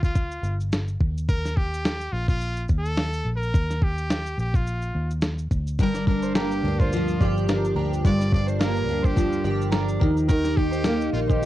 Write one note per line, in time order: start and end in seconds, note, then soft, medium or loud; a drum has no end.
0.00 0.40 D2 medium
0.00 kick medium
0.00 shaker soft
0.04 0.56 F4 medium
0.15 kick medium
0.15 shaker medium
0.31 shaker soft
0.43 0.96 G1 medium
0.43 shaker soft
0.60 shaker soft
0.72 snare loud
0.72 shaker medium
0.88 shaker soft
1.00 2.09 D#2 medium
1.00 kick medium
1.17 shaker soft
1.28 1.58 A#4 medium
1.28 kick loud
1.28 shaker medium
1.45 snare soft
1.45 shaker medium
1.57 2.14 G4 medium
1.57 kick medium
1.74 shaker medium
1.85 snare loud
1.85 shaker medium
2.01 shaker soft
2.12 2.65 A#1 medium
2.12 2.28 F4 medium
2.28 2.67 F4 medium
2.28 kick medium
2.28 shaker soft
2.41 shaker medium
2.56 shaker soft
2.68 3.22 D#2 loud
2.68 kick medium
2.68 shaker soft
2.78 3.31 A4 medium
2.85 shaker soft
2.97 snare loud
2.97 shaker medium
3.13 shaker soft
3.25 3.51 A#1 medium
3.36 3.85 A#4 medium
3.42 shaker soft
3.54 4.34 D#2 medium
3.54 kick loud
3.54 shaker medium
3.70 snare soft
3.70 shaker medium
3.82 4.39 G4 medium
3.82 kick medium
3.98 shaker soft
4.10 snare loud
4.10 shaker medium
4.26 shaker soft
4.38 4.90 A#1 medium
4.38 4.57 G4 medium
4.38 shaker soft
4.54 5.11 F4 medium
4.54 kick medium
4.54 shaker soft
4.67 shaker medium
4.82 shaker soft
4.95 5.47 D#2 medium
5.11 shaker soft
5.22 snare loud
5.22 shaker medium
5.38 shaker soft
5.51 5.77 D2 medium
5.51 kick medium
5.51 shaker soft
5.67 shaker soft
5.79 6.60 G1 medium
5.79 8.04 G2 medium
5.79 6.07 A#4 loud
5.79 kick medium
5.79 shaker medium
5.95 6.07 D5 medium
5.95 snare soft
5.95 shaker medium
6.07 6.63 D4 medium
6.07 6.34 A#4 medium
6.07 kick medium
6.22 6.35 C5 medium
6.22 shaker medium
6.35 8.61 A#3 medium
6.35 6.81 G4 medium
6.35 6.51 A#4 medium
6.35 snare loud
6.35 shaker medium
6.51 shaker soft
6.63 7.16 D2 medium
6.63 7.47 D4 medium
6.79 7.36 F4 medium
6.79 6.92 C5 medium
6.79 kick medium
6.79 shaker soft
6.92 9.16 F3 medium
6.92 shaker medium
7.08 shaker soft
7.20 7.73 G1 loud
7.20 7.76 G4 medium
7.20 7.47 D5 medium
7.20 kick medium
7.20 shaker soft
7.37 shaker soft
7.48 8.32 D4 medium
7.48 7.63 A#4 medium
7.48 snare loud
7.48 shaker medium
7.64 shaker soft
7.75 8.06 D2 medium
7.75 9.44 G4 medium
7.75 7.91 A#4 medium
7.93 shaker soft
8.05 8.88 G1 medium
8.05 10.08 G2 medium
8.05 8.32 D5 medium
8.05 kick medium
8.05 shaker medium
8.19 8.31 D5 medium
8.19 snare soft
8.19 shaker medium
8.33 8.88 D4 medium
8.33 8.47 D5 medium
8.33 kick medium
8.47 8.59 C5 medium
8.47 shaker soft
8.59 10.85 A#3 medium
8.59 8.75 A#4 medium
8.59 9.07 A#4 medium
8.59 snare loud
8.59 shaker medium
8.76 shaker soft
8.88 9.41 D2 medium
8.88 9.71 D4 medium
9.03 9.62 G4 medium
9.03 9.16 C5 medium
9.03 kick medium
9.03 shaker soft
9.16 10.31 F3 medium
9.16 kick medium
9.16 shaker medium
9.32 shaker soft
9.44 9.97 G1 medium
9.44 11.45 G4 medium
9.44 9.71 D5 medium
9.44 shaker soft
9.61 shaker soft
9.71 10.07 D4 medium
9.71 9.87 A#4 medium
9.71 snare medium
9.71 shaker medium
9.88 shaker soft
9.99 11.10 D#2 medium
9.99 10.27 D#3 medium
9.99 10.15 A#4 medium
9.99 kick medium
10.17 shaker soft
10.28 11.45 D#3 medium
10.28 10.59 A#4 loud
10.28 kick loud
10.28 shaker medium
10.44 10.57 D5 medium
10.44 snare soft
10.44 shaker medium
10.57 11.12 D#4 medium
10.57 11.12 G4 loud
10.57 kick medium
10.71 10.84 C5 medium
10.71 shaker medium
10.84 11.45 A#3 medium
10.84 11.00 A#4 medium
10.84 snare loud
10.84 shaker medium
11.01 shaker soft
11.13 11.45 A#1 medium
11.13 11.45 D#4 medium
11.13 11.20 F4 medium
11.27 11.45 G4 medium
11.27 11.41 C5 medium
11.27 kick medium
11.27 shaker soft